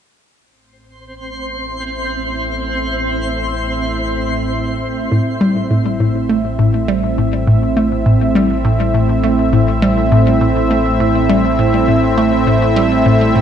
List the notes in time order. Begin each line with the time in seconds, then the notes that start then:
0.41 A1 A2 C4 C5
0.60 A3
0.84 C4
1.00 E5
1.37 E4
5.12 A1 A2
5.41 G3
5.71 A2
6.00 A2
6.29 A3
6.59 A2
6.88 G3
7.18 A2
7.47 A2
7.76 A3
8.06 A2
8.35 G3
8.65 A2
8.94 A2
9.24 A3
9.53 A2
9.82 G3
10.12 A2
10.41 A2
10.71 A3
11.00 A2
11.29 G3
11.59 A2
11.88 A2
12.18 A3
12.47 A2
12.76 G3
13.06 A2
13.36 A2